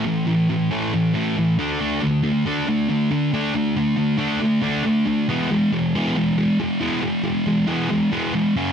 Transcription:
\new Staff \with { instrumentName = "Distorted electric guitar" } { \clef bass \time 4/4 \key e \mixolydian \tempo 4 = 138 <a, e>8 <a, e>8 <a, e>8 <a, e a>8 <a, e>8 <a, e a>8 <a, e>8 <d a d'>8 | <d a d'>8 <d a>8 <d a>8 <d a d'>8 <d a>8 <d a>8 <d a>8 <d a d'>8 | <d a>8 <d a>8 <d a>8 <d a d'>8 <d a>8 <d a d'>8 <d a>8 <d a>8 | <e gis b>8 <e gis>8 <e gis>8 <e gis b>8 <e gis>8 <e gis>8 <e gis>8 <e gis b>8 |
<e gis>8 <e gis>8 <e gis>8 <e gis b>8 <e gis>8 <e gis b>8 <e gis>8 <fis, cis fis>8 | }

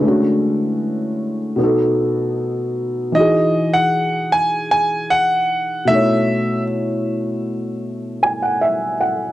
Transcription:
<<
  \new Staff \with { instrumentName = "Grand piano" } { \time 4/4 \key e \major \tempo 4 = 77 r1 | dis''8. fis''8. gis''8 gis''8 fis''4 e''8~ | e''8 r2. r8 | }
  \new Staff \with { instrumentName = "Felt piano" } { \time 4/4 \key e \major << { <gis e'>16 r2. r8. | r1 | r2 r8 gis''16 fis''16 e''8 fis''8 | } \\ { <d a cis' fis'>2 <b, b dis' a'>2 | <e dis' fis' gis'>2.~ <e dis' fis' gis'>8 <b, a dis' e' cis''>8~ | <b, a dis' e' cis''>2.~ <b, a dis' e' cis''>8 r8 | } >> }
>>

